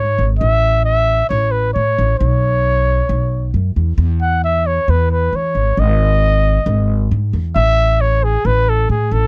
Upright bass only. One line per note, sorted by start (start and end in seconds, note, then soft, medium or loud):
0.00 0.17 G#2 medium
0.18 0.39 G#1 medium
0.41 1.20 A1 loud
1.30 1.70 A1 medium
1.76 1.96 A2 medium
1.98 2.18 A1 medium
2.20 3.00 B1 loud
3.09 3.49 B1 loud
3.54 3.74 F#2 medium
3.76 3.97 E2 medium
3.98 4.77 E2 loud
4.88 5.28 E2 loud
5.33 5.53 E3 medium
5.55 5.75 G#1 medium
5.77 6.57 G#1 loud
6.66 7.06 G#1 loud
7.11 7.31 G#2 medium
7.33 7.53 E2 medium
7.56 8.35 A1 loud
8.45 8.85 A1 medium
8.89 9.09 A2 medium
9.11 9.27 A1 medium